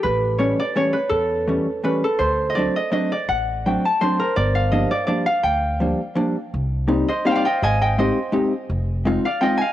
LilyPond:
<<
  \new Staff \with { instrumentName = "Harp" } { \time 3/4 \key g \minor \tempo 4 = 166 << { b'4 cis''8 d''8 cis''8 b'8 | a'2 b'8 a'8 | c''8.~ c''32 ees''32 d''8 ees''8 ees''8 d''8 | fis''4 g''8 a''8 c''8 bes'8 |
d''8 f''8 ees''8 d''8 d''8 f''8 | g''2 r4 | \key c \minor r4. ees''8 f''32 g''32 f''16 g''8 | aes''8 g''8 ees''4. r8 |
r4. f''8 g''8 aes''8 | } \\ { r2. | r2. | r2. | r2. |
r2. | r2. | r4. c''8 c''16 d''16 ees''8 | ees''8 ees''8 c''4. r8 |
r4. d''8 ees''8 f''8 | } >> }
  \new Staff \with { instrumentName = "Hollow-body jazz guitar" } { \time 3/4 \key g \minor r4 <e g a cis'>8 r8 <e g a cis'>8 r8 | r4 <e g a cis'>8 r8 <e g a cis'>8 r8 | r4 <fis a c' d'>8 r8 <fis a c' d'>8 r8 | r4 <fis a c' d'>8 r8 <fis a c' d'>8 r8 |
r4 <f g bes d'>8 r8 <f g bes d'>8 r8 | r4 <f g bes d'>8 r8 <f g bes d'>8 r8 | \key c \minor r4 <g bes c' ees'>8 r8 <g bes c' ees'>8 r8 | r4 <aes c' ees' g'>8 r8 <aes c' ees' g'>8 r8 |
r4 <aes c' ees' f'>8 r8 <aes c' ees' f'>8 r8 | }
  \new Staff \with { instrumentName = "Upright bass" } { \clef bass \time 3/4 \key g \minor a,,2 r4 | e,2 r4 | d,2 r4 | a,,2 r4 |
g,,2 r4 | d,2 r4 | \key c \minor c,2 r4 | aes,,2 r4 |
f,,2 r4 | }
>>